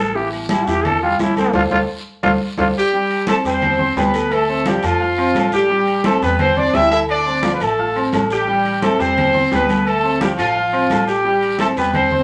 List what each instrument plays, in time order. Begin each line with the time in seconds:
Already playing: upright bass A1, trombone A4
0.15 upright piano E3 E4 E5, trombone G4, high conga, long guiro
0.32 trombone B3, high conga, low agogo
0.49 upright piano G3 G4 G5, trombone E4, high conga, low timbale, low agogo, short guiro
0.67 upright bass E2, upright piano E3 E4 E5, trombone G4, high conga, short guiro
0.85 trombone A4, high conga, low conga, low agogo, long guiro
1.02 upright piano G3 G4 G5, trombone F4, high conga
1.19 upright bass D2, upright piano E3 E4 E5, trombone E4, high conga, low timbale, low agogo, short guiro
1.36 upright piano A3 A4 A5, trombone C4, high conga, low agogo, short guiro
1.53 upright bass D2, trombone F4, upright piano A4 C5 D5, high conga, high timbale, long guiro
1.71 upright bass D2, trombone F4, upright piano A4 C5 D5, high conga, high timbale, long guiro
2.23 upright bass D2, trombone F4, upright piano A4 C5 D5, high conga, high timbale, long guiro
2.58 upright bass D2, trombone F4, upright piano A4 C5 D5, high conga, high timbale, long guiro
2.77 horn section G3 G4
2.93 upright piano G3 G4 G5, high conga
3.10 high conga, low agogo
3.27 horn section A3 A4, upright piano C4 C5 C6, high conga, low timbale, low agogo, short guiro
3.44 upright bass E2, upright piano G3 G4 G5, horn section C4 C5, high conga, short guiro
3.62 high conga, low conga, low agogo, long guiro
3.78 upright piano C4 C5 C6, high conga, low conga
3.96 upright bass D2, upright piano G3 G4 G5, horn section B3 B4, high conga, low timbale, low agogo, short guiro
4.14 upright piano A3 A4 A5, low agogo, short guiro
4.31 horn section A3 A4, high conga, low agogo, long guiro
4.48 upright piano C4 C5 C6, high conga
4.65 upright piano F3 F4 F5, horn section G3 G4, high conga, low timbale, low agogo, short guiro
4.83 upright bass F2, horn section F3 F4, upright piano A3 A4 A5, low agogo, short guiro
5.00 upright piano F4 F5 F6, high conga, long guiro
5.18 upright piano C4 C5 C6, high conga, low agogo
5.35 upright bass A1, upright piano A3 A4 A5, high conga, low timbale, low agogo, short guiro
5.52 horn section G3 G4, high conga, short guiro
5.69 upright piano G3 G4 G5, high conga, long guiro
5.87 high conga, low agogo
6.04 horn section A3 A4, upright piano C4 C5 C6, high conga, low timbale, low agogo, short guiro
6.22 upright bass E2, upright piano G3 G4 G5, horn section B3 B4, short guiro
6.39 horn section C4 C5, high conga, low conga, low agogo, long guiro
6.57 upright piano C4 C5 C6, horn section D4 D5, high conga, low conga
6.73 upright bass D2, upright piano G3 G4 G5, horn section E4 E5, high conga, low timbale, low agogo, short guiro
6.91 upright piano A3 A4 A5, horn section E4 E5, low agogo, short guiro
7.08 horn section D4 D5, high conga, low agogo, long guiro
7.26 upright piano C4 C5 C6, high conga
7.43 upright piano F3 F4 F5, high conga, low timbale, low agogo, short guiro
7.54 horn section B4
7.60 upright bass A1, upright piano A3 A4 A5, horn section A3 A4, high conga, low agogo, short guiro
7.78 upright piano F4 F5 F6, high conga, long guiro
7.95 upright piano C4 C5 C6, high conga, low agogo
8.12 upright bass A1, upright piano A3 A4 A5, high conga, low timbale, low agogo, short guiro
8.30 horn section G3 G4, short guiro
8.47 upright piano G3 G4 G5, high conga, long guiro
8.65 high conga, low agogo
8.82 horn section A3 A4, upright piano C4 C5 C6, high conga, low timbale, low agogo, short guiro
8.99 upright bass E2, upright piano G3 G4 G5, horn section C4 C5, high conga, short guiro
9.18 high conga, low conga, low agogo, long guiro
9.34 upright piano C4 C5 C6, high conga, low conga
9.51 upright bass D2, upright piano G3 G4 G5, horn section B3 B4, high conga, low timbale, low agogo, short guiro
9.69 upright piano A3 A4 A5, high conga, low agogo, short guiro
9.86 horn section A3 A4, high conga, low agogo, long guiro
10.03 upright piano C4 C5 C6, high conga
10.21 upright piano F3 F4 F5, horn section G3 G4, high conga, low timbale, low agogo, short guiro
10.37 upright bass A1, horn section F3 F4, upright piano A3 A4 A5, high conga, low agogo, short guiro
10.55 upright piano F4 F5 F6, high conga, long guiro
10.73 upright piano C4 C5 C6, high conga, low agogo
10.90 upright bass A1, upright piano A3 A4 A5, high conga, low timbale, low agogo, short guiro
11.07 horn section G3 G4, short guiro
11.24 upright piano G3 G4 G5, high conga, long guiro
11.41 high conga, low agogo
11.59 horn section A3 A4, upright piano C4 C5 C6, high conga, low timbale, low agogo, short guiro
11.77 upright bass E2, upright piano G3 G4 G5, horn section B3 B4, short guiro
11.94 horn section C4 C5, high conga, low conga, low agogo, long guiro
12.11 upright piano C4 C5 C6, high conga, low conga